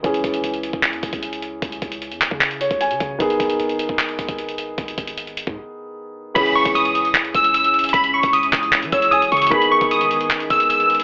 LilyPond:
<<
  \new Staff \with { instrumentName = "Synth pluck" } { \time 4/4 \key cis \dorian \tempo 4 = 152 r1 | r1 | r1 | r1 |
b''8 cis'''8 dis'''4 r8 e'''8 e'''4 | b''8 cis'''8 dis'''4 r8 e'''8 dis'''8 cis'''8 | b''8 cis'''8 dis'''4 r8 e'''8 e'''4 | }
  \new Staff \with { instrumentName = "Grand piano" } { \time 4/4 \key cis \dorian << { r1 | r2 r8 cis''8 gis''4 | r1 | r1 |
r1 | r2 r8 cis''8 gis''4 | r1 | } \\ { <e cis' gis'>1~ | <e cis' gis'>1 | <dis b gis'>1~ | <dis b gis'>1 |
<e cis' gis'>1~ | <e cis' gis'>1 | <dis b gis'>1 | } >> }
  \new Staff \with { instrumentName = "Ambient pad" } { \time 4/4 \key cis \dorian << { r1 | r1 | r1 | r1 |
<gis gis'>1~ | <gis gis'>1~ | <gis gis'>1 | } \\ { r1 | r1 | r1 | r1 |
<e cis'>1~ | <e cis'>1 | <dis b>1 | } >> }
  \new Staff \with { instrumentName = "808-style bass" } { \clef bass \time 4/4 \key cis \dorian cis,8 cis,8 cis,8. cis,8 e,16 cis,4. | cis,8 cis,8. e,8 cis4 cis,8 cis16 cis8 | gis,,8 b,,8 gis,,8. gis,,8. gis,,16 gis,,4~ gis,,16 | gis,,8 gis,,4~ gis,,16 gis,16 r2 |
cis,8. cis,16 cis,4. cis,4. | cis,8. cis,8. cis,8. e16 cis,8. b,,16 cis8 | gis,,8. gis,,16 gis,,4. gis,,4. | }
  \new DrumStaff \with { instrumentName = "Drums" } \drummode { \time 4/4 <hh bd>16 hh16 <hh bd>16 hh16 hh16 hh16 hh16 bd16 <hc hh>16 hh16 <hh bd>16 <hh bd>16 hh16 hh16 hh8 | <hh bd>16 hh16 <hh bd>16 hh16 hh16 hh16 <hc hh hho>16 bd16 <hc hh>16 hh16 hh16 <hh bd>16 hh16 hh16 <hh bd>8 | <hh bd>16 hh16 <hh bd>16 hh16 hh16 hh16 hh16 bd16 <hc hh>16 hh16 <hh bd>16 <hh bd>16 hh16 hh16 hh8 | <hh bd>16 hh16 <hh bd>16 hh16 hh16 hh16 <hh hho>16 bd16 r4 r4 |
<cymc hh bd>16 hh8 <hh bd>16 hh16 hh16 hh16 hh16 <hc hh>16 hh16 <hh bd>16 hh16 hh16 hh16 hh32 hh32 hh32 hh32 | <hh bd>16 hh8 <hh bd>16 hh16 hh16 <hc hh bd>16 hh16 <hc hh>16 hh16 <hh bd>16 hh16 hh16 hh16 hh32 hh32 hh32 hh32 | <hh bd>16 hh8 <hh bd>16 hh16 hh16 hh16 hh16 <hc hh>16 hh16 <hh bd>16 hh16 hh16 hh16 hh32 hh32 hh16 | }
>>